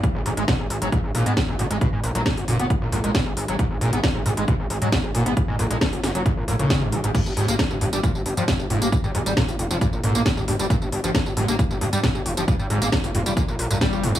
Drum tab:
CC |----------------|----------------|----------------|----------------|
HH |x-oxx-oxx-oxx-ox|x-oxxooxx-oxx-ox|x-oxx-oxx-oxx-ox|x-oxxooxx-oxx-ox|
TB |----------------|----------------|----------------|----------------|
SD |----o-------o---|----o-------o---|----o-------o---|----o-o-----o---|
BD |o---o---o---o---|o---o---o---o---|o---o---o---o---|o---o---o---o---|

CC |x---------------|----------------|----------------|----------------|
HH |x-oxx-oxx-oxx-ox|x-oxxooxx-oxx-ox|x-oxx-oxx-oxx-ox|x-oxxooxx-oxx-ox|
TB |xx-xxx-xxx-xxx-x|xx-xxx-xxx-xxx-x|xx-xxx-xxx-xxx-x|xx-xxx-xxx-xxx-x|
SD |----o-------o---|----o-------o---|----o-------o---|----o-------o---|
BD |o---o---o---o---|o---o---o---o---|o---o---o---o---|o---o---o---o---|